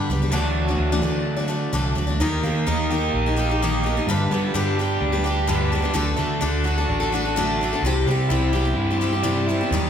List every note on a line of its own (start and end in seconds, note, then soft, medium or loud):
0.00 0.30 G2 medium
0.00 0.29 D3 medium
0.00 0.31 G3 medium
0.00 0.31 B3 loud
0.00 0.32 D4 medium
0.00 0.32 G4 medium
0.09 0.30 C#2 medium
0.09 0.21 G3 medium
0.09 0.22 D4 medium
0.09 0.22 G4 medium
0.09 0.21 B4 medium
0.22 0.32 G3 soft
0.22 0.32 D4 soft
0.22 0.33 G4 medium
0.22 0.33 B4 medium
0.32 0.74 D2 loud
0.32 0.67 D3 medium
0.32 0.67 E3 loud
0.32 2.18 F#3 medium
0.32 0.68 A3 loud
0.32 0.68 D4 medium
0.32 0.68 F#4 loud
0.32 0.67 D5 loud
0.68 0.92 A3 soft
0.68 0.92 D4 soft
0.68 0.91 F#4 medium
0.68 0.91 D5 medium
0.79 1.00 D2 loud
0.92 1.04 D3 medium
0.92 1.04 E3 medium
0.92 1.01 A3 medium
0.92 1.02 D4 medium
0.92 1.02 F#4 medium
0.92 1.03 D5 medium
1.02 1.66 D3 medium
1.02 1.37 A3 medium
1.02 1.38 D4 medium
1.02 1.36 F#4 medium
1.02 1.35 D5 medium
1.37 1.47 A3 medium
1.37 1.47 D4 medium
1.37 1.48 F#4 medium
1.37 1.49 D5 medium
1.48 1.72 A3 medium
1.48 1.73 D4 medium
1.48 1.73 F#4 medium
1.48 1.73 D5 medium
1.73 1.94 C2 medium
1.73 1.96 D3 medium
1.73 1.97 E3 medium
1.73 1.94 A3 medium
1.73 1.95 D4 medium
1.73 1.96 F#4 medium
1.73 1.97 D5 loud
1.95 2.18 D2 medium
1.95 2.08 A3 medium
1.95 2.08 D4 medium
1.95 2.07 F#4 medium
1.95 2.06 D5 medium
2.07 2.20 A3 soft
2.07 2.20 D4 medium
2.07 2.20 F#4 medium
2.07 2.19 D5 medium
2.19 2.41 D#2 medium
2.19 2.43 D#3 medium
2.19 2.42 A#3 medium
2.19 2.43 D#4 medium
2.19 2.44 G4 loud
2.19 2.44 A#4 loud
2.43 2.64 D#3 medium
2.43 2.66 A#3 medium
2.43 2.66 D#4 medium
2.43 2.67 G4 medium
2.43 2.67 A#4 medium
2.67 3.09 D#2 medium
2.67 2.90 D#3 medium
2.67 2.89 A#3 medium
2.67 2.90 D#4 medium
2.67 2.91 G4 medium
2.67 2.91 A#4 medium
2.91 3.26 A#3 medium
2.91 3.26 D#4 medium
2.91 3.26 G4 medium
2.91 3.25 A#4 medium
3.13 3.98 A#1 loud
3.13 3.83 D#4 medium
3.26 3.36 D#4 medium
3.26 3.37 G4 medium
3.26 3.37 A#4 medium
3.36 3.48 A#3 medium
3.36 3.49 D#4 medium
3.36 3.49 G4 medium
3.36 3.48 A#4 medium
3.49 3.62 D#4 soft
3.49 3.62 G4 soft
3.49 3.61 A#4 medium
3.62 3.85 D#3 medium
3.62 3.82 A#3 medium
3.62 3.85 D#4 medium
3.62 3.85 G4 loud
3.62 3.86 A#4 medium
3.84 3.95 A#3 medium
3.84 3.97 D#4 medium
3.84 3.96 G4 medium
3.84 3.96 A#4 medium
3.97 4.09 D#4 soft
3.97 4.08 G4 medium
3.97 4.08 A#4 medium
4.07 4.28 G2 loud
4.07 4.31 G2 medium
4.07 4.31 D3 medium
4.07 4.30 G3 medium
4.07 4.31 D4 loud
4.07 4.32 G4 medium
4.07 4.32 B4 loud
4.31 4.52 G3 medium
4.31 4.54 G3 medium
4.31 5.46 B3 medium
4.31 4.54 D4 medium
4.31 4.54 G4 medium
4.31 4.55 B4 medium
4.54 4.78 G2 medium
4.54 4.96 G2 medium
4.54 4.78 D3 medium
4.54 4.78 G3 medium
4.54 4.78 D4 medium
4.54 4.78 G4 loud
4.54 4.79 B4 medium
4.77 5.14 G3 medium
4.77 5.13 D4 medium
4.77 5.23 G4 medium
4.81 5.12 G4 medium
4.81 5.11 B4 medium
5.00 5.85 D2 medium
5.00 5.69 D4 medium
5.12 5.23 G3 medium
5.12 5.24 D4 medium
5.12 5.25 G4 medium
5.12 5.24 B4 medium
5.24 5.47 G3 medium
5.24 5.48 D4 medium
5.24 5.48 G4 medium
5.24 5.48 B4 medium
5.47 5.71 G2 medium
5.47 5.71 D3 medium
5.47 5.71 G3 medium
5.47 5.95 B3 medium
5.47 5.71 D4 medium
5.47 5.72 G4 loud
5.47 5.72 B4 medium
5.72 5.84 G3 medium
5.72 5.84 D4 medium
5.72 5.82 G4 medium
5.72 5.81 B4 medium
5.82 5.94 G3 soft
5.82 5.94 D4 medium
5.82 5.95 G4 medium
5.82 5.95 B4 medium
5.94 6.16 D2 medium
5.94 6.18 D3 medium
5.94 6.15 A3 loud
5.94 6.16 D4 loud
5.94 6.17 F#4 medium
5.94 6.18 A4 loud
6.17 6.40 D3 medium
6.17 6.40 A3 medium
6.17 6.41 D4 medium
6.17 6.41 F#4 medium
6.17 6.42 A4 medium
6.41 6.84 D2 loud
6.41 6.65 D3 medium
6.41 6.63 A3 medium
6.41 6.64 D4 medium
6.41 6.65 F#4 loud
6.41 6.66 A4 medium
6.64 6.77 A3 medium
6.64 6.77 D4 medium
6.64 6.77 F#4 medium
6.64 6.76 A4 medium
6.78 7.02 D4 soft
6.78 7.01 F#4 soft
6.78 6.99 A4 medium
6.88 7.73 A1 loud
6.88 7.57 D4 medium
7.00 7.12 D4 medium
7.00 7.13 F#4 medium
7.00 7.12 A4 medium
7.12 7.24 A3 medium
7.12 7.25 D4 medium
7.12 7.25 F#4 medium
7.12 7.24 A4 medium
7.26 7.36 D4 soft
7.26 7.37 F#4 medium
7.26 7.37 A4 medium
7.36 7.60 D3 medium
7.36 7.60 A3 loud
7.36 7.60 D4 loud
7.36 7.61 F#4 medium
7.36 7.61 A4 medium
7.58 7.72 A3 medium
7.58 7.82 D4 medium
7.63 7.73 D4 medium
7.63 7.73 F#4 medium
7.63 7.72 A4 medium
7.73 7.85 D4 medium
7.73 7.84 F#4 medium
7.73 7.84 A4 medium
7.82 8.04 C2 medium
7.82 8.07 C3 medium
7.82 8.06 G3 medium
7.82 8.07 C4 medium
7.86 8.08 E4 medium
7.86 8.08 G4 loud
8.06 8.28 C3 medium
8.06 8.29 G3 medium
8.06 8.30 C4 medium
8.06 8.30 E4 medium
8.11 8.30 G4 medium
8.29 8.72 C2 medium
8.29 8.54 C3 medium
8.29 8.52 G3 medium
8.29 8.52 C4 medium
8.29 8.54 E4 medium
8.29 8.54 G4 medium
8.53 8.65 G3 medium
8.53 8.65 C4 medium
8.53 8.66 E4 medium
8.53 8.64 G4 medium
8.65 8.90 C4 soft
8.65 8.90 E4 medium
8.65 8.89 G4 medium
8.76 9.61 G2 loud
8.76 9.46 E4 medium
8.91 9.00 C4 soft
8.91 9.01 E4 medium
8.91 9.01 G4 medium
8.99 9.13 G3 medium
8.99 9.13 C4 medium
8.99 9.13 E4 medium
8.99 9.90 G4 medium
9.04 9.11 G4 medium
9.13 9.23 C4 soft
9.13 9.23 E4 medium
9.13 9.24 G4 medium
9.23 9.47 C3 medium
9.23 9.47 G3 medium
9.23 9.47 C4 medium
9.23 9.48 E4 medium
9.23 9.48 G4 medium
9.49 9.60 G3 medium
9.49 9.60 C4 medium
9.49 9.61 E4 medium
9.49 9.60 G4 medium
9.61 9.73 C4 soft
9.61 9.73 E4 medium
9.61 9.72 G4 medium
9.71 9.90 D#2 medium
9.71 9.90 D#3 medium
9.71 9.90 G3 medium
9.71 9.90 A#3 medium
9.71 9.90 D#4 medium
9.71 9.90 G4 medium